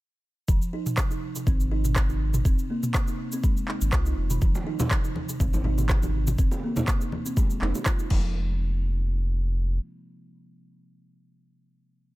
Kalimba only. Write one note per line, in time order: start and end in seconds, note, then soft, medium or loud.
0.49 0.61 F3 medium
0.73 0.85 D#4 loud
0.98 1.10 C3 medium
1.11 1.22 D#4 medium
1.36 1.46 C3 medium
1.47 1.60 C4 medium
1.71 1.83 D#4 loud
1.96 2.08 C3 medium
2.10 2.20 D#4 medium
2.34 2.44 C3 medium
2.45 2.58 C4 medium
2.70 2.82 A#3 medium
2.95 3.07 C3 medium
3.08 3.19 D#4 medium
3.33 3.43 C4 medium
3.44 3.56 G#3 medium
3.69 3.80 D#4 medium
3.93 4.05 F4 medium
4.06 4.17 D#4 medium
4.31 4.41 D#3 medium
4.42 4.54 F3 medium
4.67 4.78 D#4 loud
4.91 5.03 C3 medium
5.04 5.15 D#4 medium
5.29 5.39 C3 medium
5.40 5.53 C4 medium
5.65 5.77 D#4 loud
5.90 6.01 C3 medium
6.03 6.14 D#4 medium
6.27 6.38 C3 medium
6.39 6.51 C4 medium
6.63 6.75 A#3 medium
6.88 7.00 C3 medium
7.01 7.12 D#4 medium
7.26 7.36 C4 medium
7.37 7.50 G#3 medium
7.62 7.74 D#4 medium
7.86 7.99 F4 medium
8.00 8.10 D#4 medium
8.11 8.57 F3 loud